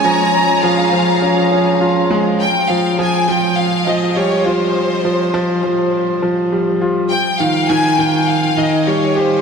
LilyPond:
<<
  \new Staff \with { instrumentName = "Violin section" } { \time 4/4 \key f \minor \tempo 4 = 102 bes''4 f''4 r2 | g''8 f''8 aes''8 g''8 f''8 ees''8 des''8 c''8~ | c''4. r2 r8 | g''8 f''8 aes''8 g''8 f''8 ees''8 des''8 c''8 | }
  \new Staff \with { instrumentName = "Upright piano" } { \clef bass \time 4/4 \key f \minor f8 r8 f8 f8 des'8 des'8 f'8 aes8 | r8 f8 f8 f8 r8 f8 g8 f'8 | r8 f8 f8 f8 r8 f8 g8 f'8 | r8 ees8 ees8 ees8 r8 ees8 g8 g'8 | }
>>